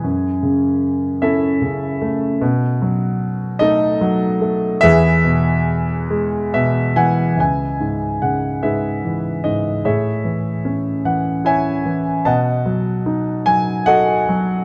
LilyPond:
<<
  \new Staff \with { instrumentName = "Grand piano" } { \time 6/8 \key e \major \tempo 4. = 50 << { gis''4. e''4 r8 | r4. dis''4. | e''2 e''8 <fis'' gis''>8 | \key cis \minor gis''4 fis''8 e''4 dis''8 |
e''4 r8 fis''8 gis''4 | a''4. gis''8 fis''4 | } \\ { <gis' b'>4. <e' a'>4 r8 | r4. <dis' a'>4. | <e' gis' b'>2 r4 | <b' e''>4. <gis' b'>4. |
<gis' cis''>4. r8 <cis'' e''>4 | <dis'' fis''>4. r8 <a' dis''>4 | } >> }
  \new Staff \with { instrumentName = "Grand piano" } { \clef bass \time 6/8 \key e \major fis,8 cis4 cis'8 cis8 a8 | b,8 fis4 a8 fis8 a8 | e,8 b,4 gis8 b,8 e8 | \key cis \minor cis,8 gis,8 cis8 gis,8 e8 gis,8 |
a,8 e8 cis'8 e8 e'8 e8 | b,8 fis8 dis'8 fis8 fis'8 fis8 | }
>>